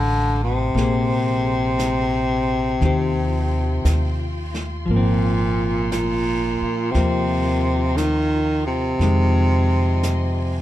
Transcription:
Already playing: A1 D3 F3 G#3 G4 F5 G5 D#6
0.44 C3
0.74 A#1 A#3 G#4 A#5 C6, brush sweep, snare
0.79 G#4 C5
1.79 brush sweep, snare, hi-hat pedal
2.81 D#2 D#3 F4 G5 C6, brush sweep, snare
2.85 G4 C5
3.84 D#2, brush sweep, snare, hi-hat pedal
4.54 snare
4.86 G#1 A#2 F3, brush sweep
4.90 A#3 A#4 G#5
4.96 C4
5.92 A#2, brush sweep, snare, hi-hat pedal
6.61 muted upright bass stroke
6.91 D#2 C3 F3 A#5, brush sweep, snare
6.97 A#3 C4
7.96 D#3, brush sweep, snare, hi-hat pedal
8.67 C3
8.97 F2 D#5 G#5 C6, brush sweep, snare
9.02 D#3 G#3
10.03 brush sweep, snare, hi-hat pedal

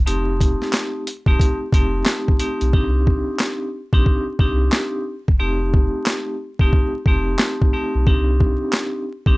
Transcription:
0.06 F1 A3 C4 D#4 G4, closed hi-hat
0.41 kick, closed hi-hat
0.62 snare
0.73 snare, clap, closed hi-hat
1.07 closed hi-hat
1.26 D#1 A3 C4 D#4 G4, kick
1.40 kick, closed hi-hat
1.73 F1 A3 C4 D#4 G4, kick, closed hi-hat
2.06 snare, clap, closed hi-hat
2.28 kick
2.40 A3 C4 D#4 G4, closed hi-hat
2.61 B1, closed hi-hat
2.73 C2 C4 D4 D#4 G4, kick
3.07 kick
3.39 snare, clap
3.93 A#1 C4 D4 D#4 G4, kick
4.06 kick
4.39 C2 C4 D4 D#4 G4, kick
4.72 snare, clap
5.28 E1, kick
5.39 F1 A3 C4 D#4 G4
5.74 kick
6.06 snare, clap
6.59 D#1 A3 C4 D#4 G4, kick
6.73 kick
7.06 F1 A3 C4 D#4 G4, kick
7.39 snare, clap
7.62 kick
7.73 A3 C4 D#4 G4
7.95 B1
8.07 C2 C4 D4 D#4 G4, kick
8.40 kick
8.73 snare, clap
9.26 A#1 C4 D4 D#4 G4, kick

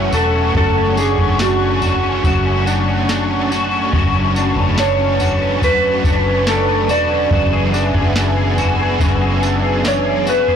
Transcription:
Already playing: F#2 C#3 E3 A3 C#4 F#4 E5 F#5 C#6
0.12 E1 A3 C#4 F#4 A4, tambourine
0.16 E3
0.35 C#4
0.55 F#1 F#2 F#3 A3 C#4 D4 F#4 A4, kick, floor tom
0.77 C#4
0.97 C#4 D4 F#4 G#4, tambourine
1.02 A3
1.18 F#1 C#4, floor tom
1.39 F#2 F#3 A3 C#4 D4 F#4, snare, tambourine
1.61 C#4
1.82 C#4 D4 F#4, floor tom, tambourine
1.86 A3
2.03 C#4
2.24 F#1 F#2 A3 C#4 D4 F#4, kick, floor tom, tambourine
2.46 C#4
2.66 A3 C#4 D4 F#4, tambourine
2.87 C#4
3.09 F#2 F#3 A3 C#4 D4 F#4, snare, tambourine
3.30 C#4
3.50 A3 C#4 D4 F#4, tambourine
3.72 C#4
3.93 F#1 F#2 F#3 A3 C#4 D4 F#4 B4 A5, kick, floor tom
4.14 C#4
4.35 A3 C#4 D4 F#4, tambourine
4.56 F#1 C#4, floor tom
4.78 F#2 F#3 A3 C#4 D4 F#4 C#5, snare, tambourine
4.99 C#4
5.20 A3 C#4 D4 F#4, floor tom, tambourine
5.42 C#4
5.62 F#2 A3 C#4 D4 F#4 B4, kick, floor tom, tambourine
5.84 C#4
6.03 F#1 A3 C#4 D4 F#4, kick, tambourine
6.26 C#4
6.46 F#2 F#3 A3 C#4 D4 F#4 A4, snare, tambourine
6.68 C#4
6.88 E1 A3 D4 F#4 D5, tambourine
7.10 C#4
7.31 F#1 F#2 E3 B3 D4 F#4 G#4 E5 G#5, kick, floor tom
7.53 G#4
7.73 B3 D4 F#4 G#4, tambourine
7.94 F#1 G#4, floor tom
8.15 F#2 E3 B3 D4 F#4 G#4, snare, tambourine
8.37 G#4
8.58 B3 D4 F#4 G#4, floor tom, tambourine
8.79 G#4
8.99 F#1 F#2 B3 D4 F#4 G#4, kick, floor tom, tambourine
9.21 G#4
9.41 B3 D4 F#4 G#4, tambourine
9.63 G#4
9.83 F#2 E3 B3 D4 F#4 G#4, snare, tambourine
9.88 C#5
10.06 G#4
10.26 B3 D4 F#4 G#4 B4, tambourine
10.48 G#4, floor tom

